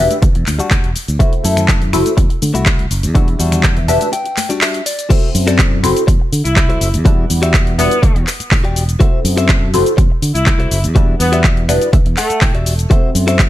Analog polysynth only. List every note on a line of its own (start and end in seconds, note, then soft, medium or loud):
0.00 0.18 D4 loud
0.00 0.18 F#4 medium
0.00 0.18 G4 medium
0.00 0.18 B4 medium
0.00 0.18 E5 loud
1.19 1.90 E4 medium
1.19 1.90 F#4 medium
1.19 1.91 A4 medium
1.19 1.91 C5 medium
1.19 1.91 E5 medium
1.93 2.13 E4 loud
1.93 2.13 F#4 medium
1.93 2.13 A4 medium
1.93 2.13 C5 medium
1.93 2.13 E5 loud
3.15 3.86 G3 medium
3.15 3.85 D4 medium
3.15 3.86 F#4 medium
3.15 3.86 B4 medium
3.15 3.86 E5 medium
3.88 4.08 D4 loud
3.88 4.08 F#4 medium
3.88 4.09 G4 medium
3.88 4.09 B4 medium
3.88 4.09 E5 loud
5.10 5.81 C4 medium
5.10 5.81 E4 medium
5.10 5.81 F#4 medium
5.10 5.81 A4 medium
5.10 5.81 C5 medium
5.83 6.03 C4 loud
5.83 6.03 E4 medium
5.83 6.04 F#4 medium
5.83 6.04 A4 medium
5.83 6.04 C5 loud
7.05 7.75 G3 medium
7.05 7.76 D4 medium
7.05 7.76 E4 medium
7.05 7.76 B4 medium
7.05 7.76 F#5 medium
7.78 7.98 G3 loud
7.78 7.99 D4 medium
7.78 7.99 E4 medium
7.78 7.99 F#4 medium
7.78 7.99 B4 loud
9.00 9.71 C4 medium
9.00 9.71 E4 medium
9.00 9.71 F#4 medium
9.00 9.71 A4 medium
9.00 9.72 C5 medium
9.74 9.94 C4 loud
9.74 9.94 E4 medium
9.74 9.94 F#4 medium
9.74 9.94 A4 medium
9.74 9.94 C5 loud
10.95 11.66 G3 medium
10.95 11.66 D4 medium
10.95 11.66 E4 medium
10.95 11.67 B4 medium
10.95 11.66 F#5 medium
11.68 11.89 G3 loud
11.68 11.89 D4 medium
11.68 11.89 E4 medium
11.68 11.89 F#4 medium
11.68 11.89 B4 loud
12.90 13.49 C4 medium
12.90 13.49 E4 medium
12.90 13.49 F#4 medium
12.90 13.49 A4 medium
12.90 13.49 C5 medium